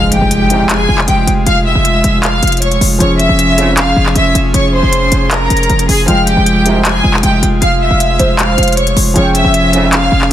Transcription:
Already playing: F1 F3 G#3 F4, impact
0.12 G4 G5, closed hi-hat
0.21 F1
0.31 closed hi-hat
0.50 C2 G#2 C3, closed hi-hat
0.69 G#4 G#5, clap, closed hi-hat
0.89 F1
0.98 clap
1.08 F1 G4 G5, closed hi-hat
1.27 F1, closed hi-hat
1.46 F1 F5 F6, closed hi-hat
1.66 E5 E6
1.75 F1
1.85 closed hi-hat
2.04 F1, closed hi-hat
2.23 F5 F6, clap, closed hi-hat
2.43 F1, closed hi-hat
2.47 closed hi-hat
2.52 closed hi-hat
2.57 closed hi-hat
2.62 C#5 C#6, closed hi-hat
2.71 closed hi-hat
2.81 F1, open hi-hat
2.98 F1 F3 C#4 F4 G#4 C#5 C#6, closed hi-hat
3.19 E5 E6, closed hi-hat
3.29 F1
3.39 closed hi-hat
3.58 F2 G#2 C#3, closed hi-hat
3.77 F5 F6, clap, closed hi-hat
3.96 F1
4.06 clap
4.16 F1 E5 E6, closed hi-hat
4.35 F1, closed hi-hat
4.54 F1 C#5 C#6, closed hi-hat
4.74 C5 C6
4.83 F1
4.93 closed hi-hat
5.12 F1, closed hi-hat
5.31 A#4 A#5, clap, closed hi-hat
5.50 F1, closed hi-hat
5.57 closed hi-hat
5.63 closed hi-hat
5.70 F1, closed hi-hat
5.79 closed hi-hat
5.89 F1 G#4 G#5, open hi-hat
6.06 F1 F3 G#3 F4 F5 G5 F6, closed hi-hat
6.27 G4 G5, closed hi-hat
6.37 F1
6.46 closed hi-hat
6.66 C2 G#2 C3, closed hi-hat
6.85 G#4 G#5, clap, closed hi-hat
7.04 F1
7.14 clap
7.23 F1 G4 G5, closed hi-hat
7.43 F1, closed hi-hat
7.62 F1 F5 F6, closed hi-hat
7.82 E5 E6
7.91 F1
8.00 closed hi-hat
8.19 F1 C5, closed hi-hat
8.38 F5 F6, clap, closed hi-hat
8.58 F1, closed hi-hat
8.63 closed hi-hat
8.68 closed hi-hat
8.72 closed hi-hat
8.77 C#5 C#6, closed hi-hat
8.87 closed hi-hat
8.96 F1, open hi-hat
9.14 F1 F3 C#4 F4 G#4 C#5 G5 C#6, closed hi-hat
9.35 E5 E6, closed hi-hat
9.45 F1
9.54 closed hi-hat
9.73 F2 G#2 C#3, closed hi-hat
9.92 F5 F6, clap, closed hi-hat
10.12 F1
10.21 clap

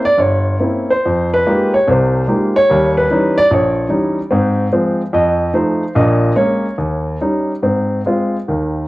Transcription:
0.05 D5
0.18 G1 C#5
0.59 A#3 C4 C#4 E4
0.90 C5
1.06 F2
1.34 B4
1.46 G#3 A#3 D#4 F4 G4
1.74 C#5
1.87 C2 C3 C5
2.28 G#3 A#3 D#4 F4 G4
2.56 C#5
2.70 D#2 G3
2.97 B4
3.10 E3 G3 C#4 D#4
3.38 D5
3.51 A#1 C#5
3.89 E3 G3 C#4 D#4
4.31 G#2 C4
4.73 F3 G#3 C4
5.13 F2 D#5
5.54 F3 A3 D#4 C5
5.95 A#1 A#2 D#5
6.36 G#3 A#3 C#4 C#5
6.78 D#2
7.21 G3 C#4 D#4
7.63 G#2 C4
8.06 G#3 C4 F4
8.48 D#2 D#3

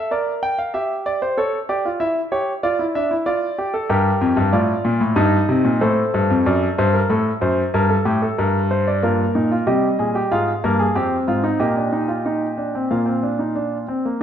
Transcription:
Already playing: A4 E5
0.11 A#4 D5
0.43 G5
0.58 F5
0.74 G4 E5
1.06 D5
1.22 C5
1.38 A4 C#5
1.69 G4 D5
1.85 F4
2.00 E4 E5
2.32 G4 C#5
2.63 F4 D5
2.79 E4
2.95 D4 E5
3.11 E4
3.26 F4 D5
3.58 G4
3.74 A4
3.90 G2 G4 A#4
4.21 F2
4.37 G2
4.53 A2 F4 D5
4.85 A#2
5.00 A2
5.16 G2 D#4 D#5
5.49 C3
5.65 A#2
5.81 A2 A4 C5
6.14 G2
6.30 F2
6.46 F#2 D5
6.78 G2 C5
6.94 A#4
7.10 A2 A4
7.41 F#2 C5
7.74 G2 A#4
7.90 A4
8.05 A2 G4
8.22 A4
8.38 G2 A#4
8.71 C5
8.88 D5
9.03 G2 A#3 F4 A#4
9.35 A#2 D#4
9.52 F4
9.67 C3 G3 G4 D#5
9.99 A#2 G#4
10.15 G4
10.31 G#2 G#3 F4 F5
10.64 G2 A#3 A#4
10.79 G#4
10.95 F2 C4 G4
11.28 G#2 F4
11.44 D#4
11.60 A#2 A#3 G4 D#5
11.76 D4
11.92 D#4
12.08 F4
12.26 D#4
12.58 D4
12.75 C4
12.91 A#2 A#3 F4 F5
13.06 C4
13.23 D4
13.39 D#4
13.55 D4
13.88 C4
14.05 A#3

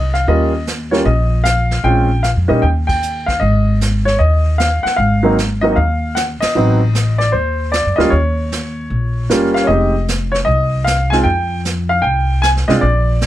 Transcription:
Already playing: C2 D#5
0.14 F5, snare
0.27 D#2 G3 A#3 C#4 F4 D#5, brush sweep
0.67 snare, hi-hat pedal
0.91 G3 A#3 C#4 F4 C#5, snare
1.05 A#1 D#5, brush sweep
1.44 F5, snare, hi-hat pedal
1.71 snare
1.84 A#1 G#3 C4 C#4 F4 G5, brush sweep
2.23 F5, snare, hi-hat pedal
2.36 F2
2.48 A#2 G3 A#3 C#4 D#4 D#5
2.62 D#2 G5, brush sweep
2.87 G5, kick, ride
3.02 hi-hat pedal
3.26 F5, kick, snare
3.40 G#1 D#5, brush sweep
3.81 snare, hi-hat pedal
4.05 C#5, snare
4.19 D#2 D#5, brush sweep
4.58 F5, snare, hi-hat pedal
4.83 F#5, muted upright bass stroke, snare
4.96 G#1 F5, brush sweep
5.23 F#3 A#3 C4 D#4
5.38 snare, hi-hat pedal
5.61 F#3 A#3 C4 D#4 D#5
5.72 D#5 F5
5.76 D#2, brush sweep
6.15 F#5, snare, hi-hat pedal
6.41 D#5, muted upright bass stroke, snare, ride
6.55 A1 F#3 B3 C4 D#4, brush sweep
6.95 snare, hi-hat pedal
7.18 D5, snare
7.32 D#2 C5, brush sweep
7.72 D5, snare, hi-hat pedal
7.86 F#2
7.96 D2 G3 A#3 C#4 D#5, snare
8.00 F4
8.10 D#2 C#5, brush sweep
8.52 snare, hi-hat pedal
8.90 A#1, brush sweep
9.30 F#1 G3 A#3 C#4 F4, snare, hi-hat pedal
9.54 F5, snare
9.64 C#5 D#5
9.68 F1 G#3 C4 D#4 G4, brush sweep
10.08 snare, hi-hat pedal
10.32 C#5, snare
10.45 C2 D#5, brush sweep
10.84 F5, snare, hi-hat pedal
11.10 G#3 C4 D#4 F4 G#5, snare
11.24 F2 G5, brush sweep
11.65 snare, hi-hat pedal
11.89 F5
12.02 C2 G5, brush sweep
12.42 G#5, snare, hi-hat pedal
12.57 snare
12.68 C2 G#3 C4 D4 F4 D#5, snare
12.81 A#1 D5, brush sweep
13.21 snare, hi-hat pedal

